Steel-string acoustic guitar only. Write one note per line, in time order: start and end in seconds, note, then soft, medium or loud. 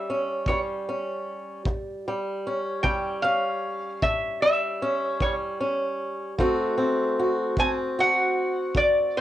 0.00 0.47 G3 medium
0.00 1.63 G4 medium
0.10 0.87 C#4 medium
0.49 1.19 E3 medium
0.49 2.05 G3 medium
0.89 1.61 C#4 medium
1.66 2.37 A2 medium
2.08 2.83 G3 medium
2.47 3.23 C#4 medium
2.84 3.55 E3 medium
2.84 4.41 G3 medium
3.24 4.81 C#4 medium
4.02 4.73 A2 medium
4.42 5.20 G3 medium
4.82 5.59 C#4 medium
5.21 5.91 E3 medium
5.21 6.39 G3 medium
5.61 6.34 C#4 medium
6.38 7.09 D3 medium
6.38 7.58 A3 medium
6.38 6.77 C4 medium
6.38 7.19 F#4 medium
6.78 7.58 C4 medium
7.19 7.97 F#4 medium
7.58 8.28 A3 medium
7.58 9.15 C4 medium
7.99 9.21 F#4 medium
8.76 9.21 D3 medium
9.17 9.21 C4 medium